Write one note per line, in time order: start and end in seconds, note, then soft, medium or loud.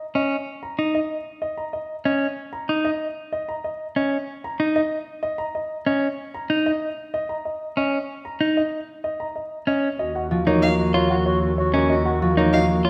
0.15 0.36 C#4 medium
0.15 0.36 D#5 medium
0.63 0.83 A#5 medium
0.79 0.99 D#4 soft
0.95 1.15 D#5 medium
1.42 1.63 D#5 medium
1.57 1.78 A#5 medium
1.73 1.94 D#5 medium
2.05 2.26 C#4 medium
2.05 2.26 D#5 medium
2.53 2.74 A#5 medium
2.69 2.90 D#4 medium
2.85 3.05 D#5 medium
3.32 3.53 D#5 medium
3.48 3.69 A#5 medium
3.64 3.85 D#5 medium
3.96 4.17 C#4 medium
3.96 4.17 D#5 medium
4.44 4.64 A#5 medium
4.60 4.80 D#4 medium
4.76 4.96 D#5 medium
5.23 5.43 D#5 medium
5.38 5.59 A#5 medium
5.55 5.75 D#5 medium
5.86 6.07 C#4 medium
5.86 6.07 D#5 medium
6.34 6.55 A#5 medium
6.50 6.71 D#4 medium
6.66 6.87 D#5 medium
7.14 7.34 D#5 medium
7.29 7.50 A#5 soft
7.45 7.66 D#5 medium
7.77 7.98 C#4 soft
7.77 7.98 D#5 medium
8.25 8.45 A#5 medium
8.41 8.61 D#4 medium
8.57 8.77 D#5 medium
9.04 9.25 D#5 medium
9.20 9.40 A#5 medium
9.36 9.56 D#5 soft
9.67 9.88 C#4 soft
9.67 9.88 D#5 medium
9.99 12.90 D#2 medium
9.99 10.10 F#4 soft
9.99 10.20 D#5 medium
10.14 10.26 F#4 soft
10.14 10.36 F#5 medium
10.30 12.21 F3 soft
10.30 10.41 F#4 soft
10.46 11.73 A#3 medium
10.46 10.67 D#4 soft
10.46 10.57 F#4 soft
10.46 10.68 C#5 medium
10.62 10.73 F#4 soft
10.62 10.83 D#5 soft
10.62 10.74 F5 medium
10.78 10.89 F#4 soft
10.94 11.15 F4 medium
10.94 11.05 F#4 medium
10.94 11.15 C#5 medium
11.10 11.21 F#4 medium
11.10 11.31 F#5 medium
11.26 11.37 F#4 medium
11.26 11.47 C#5 medium
11.42 11.53 F#4 medium
11.58 11.69 F#4 medium
11.58 11.79 C#5 medium
11.74 12.37 A#3 medium
11.74 11.94 C#4 medium
11.74 11.85 F#4 medium
11.74 11.88 D#5 soft
11.90 12.01 F#4 medium
11.90 12.10 D#5 medium
12.05 12.16 F#4 medium
12.05 12.26 F#5 medium
12.21 12.90 F3 medium
12.21 12.32 F#4 medium
12.37 12.90 A#3 medium
12.37 12.58 D#4 soft
12.37 12.48 F#4 medium
12.37 12.58 C#5 medium
12.53 12.64 F#4 medium
12.53 12.74 D#5 medium
12.53 12.65 F5 medium
12.69 12.80 F#4 medium
12.85 12.90 F4 medium
12.85 12.90 F#4 soft
12.85 12.90 C#5 medium